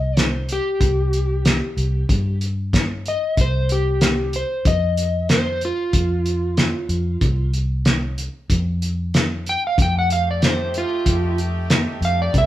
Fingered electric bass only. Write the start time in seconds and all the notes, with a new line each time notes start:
Already playing: C2
0.80 C2
1.77 C2
2.09 G2
3.37 C2
4.65 F2
5.93 F2
6.89 F2
7.21 C2
8.50 F2
9.78 F2
11.06 F2
12.01 F2
12.34 C2